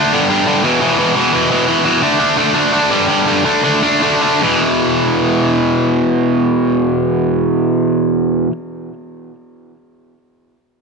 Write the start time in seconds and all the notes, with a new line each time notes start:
Already playing: D3 A3 D4
0.13 G2 D3 G3
0.30 G2 D3 G3
0.47 G2 D3 G3
0.64 E2 B2 E3
0.81 E2 B2 E3
0.98 E2 B2 E3
1.16 E2 B2 E3
1.33 E2 B2 E3
1.50 E2 B2 E3
1.67 E2 B2 E3
1.85 E2 B2 E3
2.02 D3 A3 D4
2.19 D3 A3 D4
2.37 D3 A3 D4
2.54 D3 A3 D4
2.73 D3 A3 D4
2.90 G2 D3 G3
3.08 G2 D3 G3
3.26 G2 D3 G3
3.45 D3 A3 D4
3.64 D3 A3 D4
3.83 D3 A3 D4
4.02 D3 A3 D4
4.21 D3 A3 D4
4.40 E2 B2
4.44 E3